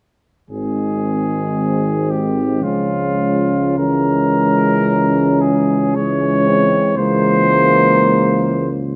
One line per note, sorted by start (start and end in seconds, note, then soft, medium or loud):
0.50 2.64 G#1 soft
0.50 2.65 D#3 soft
0.50 2.59 G#3 soft
0.50 2.59 C4 soft
0.50 2.12 G#4 soft
2.11 2.65 G4 soft
2.61 6.80 C#2 soft
2.61 3.78 F3 soft
2.61 3.75 G#3 soft
2.61 3.77 C#4 soft
2.61 3.78 F4 soft
3.78 5.93 E3 soft
3.78 5.92 G#3 soft
3.78 5.92 C#4 soft
3.78 5.42 A#4 medium
5.41 5.97 G#4 medium
5.95 6.95 E3 soft
5.95 6.94 G#3 soft
5.95 6.46 C#4 soft
5.95 6.96 C#5 medium
6.47 6.96 C4 soft
6.96 8.96 C#2 soft
6.96 8.69 E3 soft
6.96 8.68 G#3 soft
6.96 8.83 A#3 medium
6.96 8.68 C5 medium